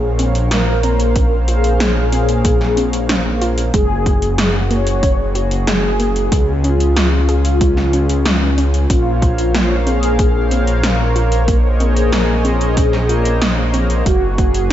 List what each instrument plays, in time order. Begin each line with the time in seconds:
Already playing: detuned saw bass A#1, analog synth pad A#3 A#4 C5 C#5 F5, analog polysynth G#4
0.19 synth arpeggio sound C4, closed hi-hat
0.35 closed hi-hat
0.51 synth arpeggio sound A#3, analog polysynth A#4, snare, closed hi-hat
0.83 synth arpeggio sound C4, closed hi-hat
1.00 closed hi-hat
1.16 synth arpeggio sound C#4, kick, closed hi-hat
1.48 synth arpeggio sound F4, analog polysynth G#4, closed hi-hat
1.64 closed hi-hat
1.80 synth arpeggio sound A#3, snare, closed hi-hat
2.12 synth arpeggio sound C4, closed hi-hat
2.29 closed hi-hat
2.45 synth arpeggio sound A#3, kick, closed hi-hat
2.61 snare
2.77 synth arpeggio sound C4, closed hi-hat
2.93 closed hi-hat
3.09 synth arpeggio sound C#4, snare, closed hi-hat
3.42 synth arpeggio sound F4, closed hi-hat
3.58 closed hi-hat
3.74 detuned saw bass F#1, synth arpeggio sound G#3, analog synth pad F#4 G#4, analog polysynth G#4, kick, closed hi-hat
4.06 synth arpeggio sound A#3, kick, closed hi-hat
4.22 closed hi-hat
4.38 synth arpeggio sound G#3, snare, closed hi-hat
4.71 synth arpeggio sound A#3, analog polysynth C#5, closed hi-hat
4.87 closed hi-hat
5.03 synth arpeggio sound C#4, kick, closed hi-hat
5.35 synth arpeggio sound F#4, closed hi-hat
5.51 closed hi-hat
5.67 synth arpeggio sound G#3, analog polysynth G#4, snare, closed hi-hat
6.00 synth arpeggio sound A#3, closed hi-hat
6.16 closed hi-hat
6.32 detuned saw bass C#2, synth arpeggio sound G#3, analog synth pad C#4 F4, kick, closed hi-hat
6.64 synth arpeggio sound C#4, analog polysynth F4, closed hi-hat
6.80 closed hi-hat
6.96 synth arpeggio sound F4, snare, closed hi-hat
7.29 synth arpeggio sound G#4, closed hi-hat
7.45 closed hi-hat
7.61 synth arpeggio sound G#3, kick, closed hi-hat
7.77 snare
7.93 synth arpeggio sound C#4, closed hi-hat
8.09 closed hi-hat
8.25 synth arpeggio sound G#3, snare, closed hi-hat
8.58 synth arpeggio sound C#4, closed hi-hat
8.74 closed hi-hat
8.90 detuned saw bass A#1, analog synth pad A#3 A#4 C5 C#5 F5, synth arpeggio sound C#4, analog polysynth F4, kick, closed hi-hat
9.22 synth arpeggio sound F4, kick, closed hi-hat
9.38 closed hi-hat
9.54 synth arpeggio sound A#3, snare, closed hi-hat
9.87 synth arpeggio sound C4, analog polysynth G#4, closed hi-hat
10.03 closed hi-hat
10.19 synth arpeggio sound A#3, kick, closed hi-hat
10.51 synth arpeggio sound C4, closed hi-hat
10.67 closed hi-hat
10.83 synth arpeggio sound C#4, analog polysynth A#4, snare, closed hi-hat
11.16 synth arpeggio sound F4, closed hi-hat
11.32 closed hi-hat
11.48 synth arpeggio sound A#3, analog synth pad D#5, kick, closed hi-hat
11.80 synth arpeggio sound C4, analog polysynth G#4, closed hi-hat
11.96 closed hi-hat
12.12 synth arpeggio sound A#3, snare, closed hi-hat
12.45 synth arpeggio sound C4, closed hi-hat
12.61 closed hi-hat
12.77 synth arpeggio sound C#4, kick, closed hi-hat
12.93 snare
13.09 synth arpeggio sound F4, closed hi-hat
13.25 closed hi-hat
13.41 synth arpeggio sound A#3, snare, closed hi-hat
13.74 synth arpeggio sound C4, closed hi-hat
13.90 closed hi-hat
14.06 detuned saw bass F#1, synth arpeggio sound G#3, analog synth pad F#4 G#4, analog polysynth F#4, kick, closed hi-hat
14.38 synth arpeggio sound A#3, kick, closed hi-hat
14.54 closed hi-hat